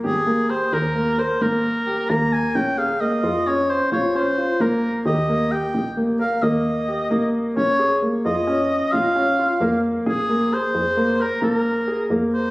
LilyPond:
<<
  \new Staff \with { instrumentName = "Oboe" } { \time 11/8 \key bes \dorian \tempo 4 = 132 aes'4 c''8 bes'4 c''8 bes'4. bes''8 aes''8 | g''8 f''8 ees''4 des''8 c''8 des''8 c''4 bes'8. r16 | ees''4 g''4 r8 f''8 ees''2 r8 | des''4 r8 ees''4. f''2 r8 |
aes'4 c''4. bes'8 bes'4. r8 c''8 | }
  \new Staff \with { instrumentName = "Grand piano" } { \time 11/8 \key bes \dorian g'8 bes8 g'4 bes8 bes'8 bes4 g'8 bes4 | des'8 aes'8 bes8 f'8 des'4 f'8 des'8 f'8 bes4 | g'8 bes8 g'4 bes8 bes'8 bes4 g'8 bes4 | des'8 aes'8 bes8 f'8 des'4 f'8 des'8 f'8 bes4 |
aes'8 bes8 aes'4 bes8 bes'8 bes4 aes'8 bes4 | }
  \new Staff \with { instrumentName = "FM bass" } { \clef bass \time 11/8 \key bes \dorian aes,,4. ees,4. aes,,4. ees,4 | bes,,4. f,4. bes,,4. bes,,4 | ees,4. bes,,4. ees,4. bes,,4 | bes,,4. f,4. bes,,4. f,4 |
bes,,4. f,4. bes,,4. f,4 | }
>>